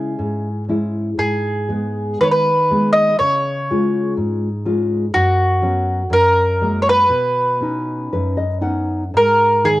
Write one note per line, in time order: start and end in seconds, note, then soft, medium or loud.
0.00 0.15 C#3 medium
0.00 0.47 G#3 soft
0.00 0.48 C#4 soft
0.00 0.48 E4 soft
0.00 0.64 G#4 medium
0.19 1.16 G#2 medium
0.68 1.09 G#3 soft
0.68 1.08 C#4 soft
0.68 1.09 E4 soft
1.18 2.15 G#2 soft
1.18 2.20 G#4 medium
1.69 2.48 G#3 soft
1.69 2.49 B3 soft
2.21 3.16 D#3 medium
2.21 2.27 B4 medium
2.21 2.31 C#5 medium
2.32 2.92 B4 medium
2.71 3.09 G#3 soft
2.71 3.09 A#3 soft
2.71 3.10 B3 soft
2.93 3.18 D#5 medium
3.19 4.14 C#3 medium
3.19 4.13 C#5 medium
3.71 4.48 G#3 soft
3.71 4.48 C#4 soft
3.71 4.48 F4 soft
4.17 5.11 G#2 medium
4.65 5.04 G#3 soft
4.65 5.04 C#4 soft
4.65 5.04 F4 soft
5.14 6.09 F#2 medium
5.14 6.14 F#4 medium
5.62 6.01 F#3 soft
5.62 6.01 B3 soft
5.62 6.02 C#4 medium
6.10 7.07 F#2 medium
6.10 6.81 A#4 medium
6.61 7.01 F#3 soft
6.61 7.01 G#3 soft
6.61 7.01 A#3 soft
6.82 6.87 C#5 medium
6.89 8.60 B4 medium
7.10 8.08 B2 medium
7.61 8.42 B3 soft
7.61 8.43 C#4 soft
7.61 8.43 D#4 soft
8.13 9.11 F#2 soft
8.13 8.36 B4 medium
8.37 8.61 D#5 soft
8.61 9.03 B3 soft
8.61 9.03 C#4 soft
8.61 9.02 D#4 soft
8.61 9.09 F#5 medium
9.14 9.80 G#2 medium
9.14 9.67 A#4 medium
9.64 9.80 D#3 soft
9.64 9.80 G#4 medium